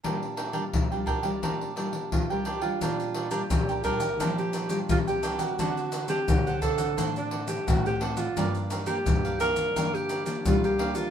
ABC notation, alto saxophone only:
X:1
M:4/4
L:1/16
Q:1/4=86
K:Bb
V:1 name="Alto saxophone"
z12 F G2 F- | F3 G3 B3 G2 G F G2 _G- | _G3 =G3 A3 D2 G ^F G2 =F- | F z2 G3 B3 G2 G F G2 F |]